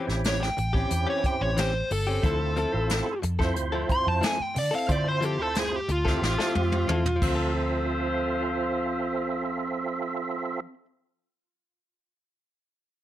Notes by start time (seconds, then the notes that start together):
Already playing: E4 G4 C5
0.07 A1 C4 C#4 E4 G4, muted clean electric guitar stroke, snare
0.24 C#5, snare, closed hi-hat
0.40 G5, muted clean electric guitar stroke, snare
0.57 A1, muted clean electric guitar stroke, closed hi-hat
0.73 C4 C#4 E4 G4, kick
0.91 E2, muted clean electric guitar stroke, closed hi-hat
1.07 E3 C4 C#4 G4 C#5
1.24 G4 C5 G5, muted clean electric guitar stroke, muted fingered electric bass stroke, kick, closed hi-hat
1.41 A1 C#5
1.57 E3 C4 C#4 G4 C5, snare, closed hi-hat
1.74 muted clean electric guitar stroke
1.91 G1 A4, muted clean electric guitar stroke, open hi-hat
2.07 C4 C#4 G4
2.22 D2 F3 C4 E4 F4 A4 C5 E5, kick, closed hi-hat
2.40 muted clean electric guitar stroke
2.56 F3 C4 E4 A4, closed hi-hat
2.72 A1 C4 E4 F4 A4, muted clean electric guitar stroke
2.90 snare, closed hi-hat
3.06 muted clean electric guitar stroke
3.22 F2, muted clean electric guitar stroke, closed hi-hat
3.39 C4 E4 F4 A4 C5, kick, snare
3.56 D2, muted clean electric guitar stroke, closed hi-hat
3.72 F3 C4 E4 A4
3.89 F3 C5 C6, muted clean electric guitar stroke, kick, closed hi-hat
4.07 F2 A5
4.21 F3 C4 E4 A4 G#5, snare, closed hi-hat
4.38 G5, muted clean electric guitar stroke, muted fingered electric bass stroke
4.55 D3 D5, muted clean electric guitar stroke, open hi-hat
4.71 C4 E4 A4
4.75 F5
4.88 D3 F3 C4 E4 F4 C5 D5 E5, kick, closed hi-hat
5.05 C5, muted clean electric guitar stroke
5.21 F3 C4 E4 A4, closed hi-hat
5.25 G4
5.38 D2 C4 E4 F4 A4 C5, muted clean electric guitar stroke
5.55 snare, closed hi-hat
5.59 G#4
5.72 muted clean electric guitar stroke
5.76 G4
5.88 D2 F4, muted clean electric guitar stroke, closed hi-hat
6.05 C4 E4 F4 G4 A4 E5, kick, snare
6.22 A1, muted clean electric guitar stroke, snare
6.39 F3 C4 E4 A4, snare
6.54 F2 F4 C5, muted clean electric guitar stroke, high tom
6.72 high tom
6.88 E2 F3 C4 E4 A4, mid tom
7.05 muted clean electric guitar stroke, mid tom
7.16 F3
7.21 D2 C4 F4 A4 C5 E5, kick, crash
7.35 A4